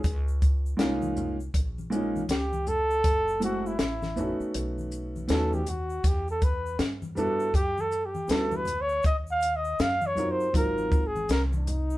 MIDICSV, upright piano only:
0, 0, Header, 1, 2, 480
1, 0, Start_track
1, 0, Tempo, 750000
1, 27, Time_signature, 4, 2, 24, 8
1, 7665, End_track
2, 0, Start_track
2, 0, Title_t, "Upright piano"
2, 0, Program_c, 0, 0
2, 492, Note_on_c, 0, 56, 84
2, 499, Note_on_c, 0, 58, 74
2, 505, Note_on_c, 0, 61, 72
2, 511, Note_on_c, 0, 63, 78
2, 518, Note_on_c, 0, 65, 93
2, 858, Note_off_c, 0, 56, 0
2, 862, Note_off_c, 0, 58, 0
2, 865, Note_off_c, 0, 61, 0
2, 868, Note_off_c, 0, 63, 0
2, 871, Note_off_c, 0, 65, 0
2, 1217, Note_on_c, 0, 56, 80
2, 1223, Note_on_c, 0, 58, 75
2, 1229, Note_on_c, 0, 61, 72
2, 1236, Note_on_c, 0, 63, 71
2, 1242, Note_on_c, 0, 65, 76
2, 1407, Note_off_c, 0, 56, 0
2, 1410, Note_off_c, 0, 58, 0
2, 1413, Note_off_c, 0, 61, 0
2, 1417, Note_off_c, 0, 63, 0
2, 1420, Note_off_c, 0, 65, 0
2, 2176, Note_on_c, 0, 56, 71
2, 2182, Note_on_c, 0, 57, 62
2, 2186, Note_on_c, 0, 60, 64
2, 2193, Note_on_c, 0, 64, 66
2, 2196, Note_on_c, 0, 66, 82
2, 2367, Note_off_c, 0, 56, 0
2, 2370, Note_off_c, 0, 57, 0
2, 2371, Note_off_c, 0, 60, 0
2, 2375, Note_off_c, 0, 64, 0
2, 2377, Note_off_c, 0, 66, 0
2, 2660, Note_on_c, 0, 57, 65
2, 2665, Note_on_c, 0, 59, 56
2, 2669, Note_on_c, 0, 61, 60
2, 2676, Note_on_c, 0, 63, 57
2, 2682, Note_on_c, 0, 66, 78
2, 3347, Note_off_c, 0, 57, 0
2, 3350, Note_off_c, 0, 59, 0
2, 3352, Note_off_c, 0, 61, 0
2, 3355, Note_off_c, 0, 63, 0
2, 3358, Note_off_c, 0, 66, 0
2, 3377, Note_on_c, 0, 57, 67
2, 3382, Note_on_c, 0, 59, 57
2, 3388, Note_on_c, 0, 61, 62
2, 3393, Note_on_c, 0, 63, 63
2, 3398, Note_on_c, 0, 66, 77
2, 3567, Note_off_c, 0, 57, 0
2, 3570, Note_off_c, 0, 59, 0
2, 3572, Note_off_c, 0, 61, 0
2, 3575, Note_off_c, 0, 63, 0
2, 3577, Note_off_c, 0, 66, 0
2, 4577, Note_on_c, 0, 55, 75
2, 4584, Note_on_c, 0, 59, 69
2, 4589, Note_on_c, 0, 62, 75
2, 4594, Note_on_c, 0, 64, 66
2, 4601, Note_on_c, 0, 66, 86
2, 4767, Note_off_c, 0, 55, 0
2, 4771, Note_off_c, 0, 59, 0
2, 4773, Note_off_c, 0, 62, 0
2, 4775, Note_off_c, 0, 64, 0
2, 4779, Note_off_c, 0, 66, 0
2, 5298, Note_on_c, 0, 55, 64
2, 5303, Note_on_c, 0, 59, 54
2, 5309, Note_on_c, 0, 62, 50
2, 5313, Note_on_c, 0, 64, 56
2, 5320, Note_on_c, 0, 66, 66
2, 5487, Note_off_c, 0, 55, 0
2, 5490, Note_off_c, 0, 59, 0
2, 5493, Note_off_c, 0, 62, 0
2, 5495, Note_off_c, 0, 64, 0
2, 5499, Note_off_c, 0, 66, 0
2, 6498, Note_on_c, 0, 54, 65
2, 6503, Note_on_c, 0, 60, 62
2, 6506, Note_on_c, 0, 63, 58
2, 6514, Note_on_c, 0, 65, 56
2, 6518, Note_on_c, 0, 70, 72
2, 6688, Note_off_c, 0, 54, 0
2, 6690, Note_off_c, 0, 60, 0
2, 6692, Note_off_c, 0, 63, 0
2, 6695, Note_off_c, 0, 65, 0
2, 6698, Note_off_c, 0, 70, 0
2, 6739, Note_on_c, 0, 54, 65
2, 6745, Note_on_c, 0, 60, 57
2, 6749, Note_on_c, 0, 63, 55
2, 6753, Note_on_c, 0, 65, 66
2, 6761, Note_on_c, 0, 70, 64
2, 7042, Note_off_c, 0, 54, 0
2, 7046, Note_off_c, 0, 60, 0
2, 7047, Note_off_c, 0, 63, 0
2, 7049, Note_off_c, 0, 65, 0
2, 7053, Note_off_c, 0, 70, 0
2, 7665, End_track
0, 0, End_of_file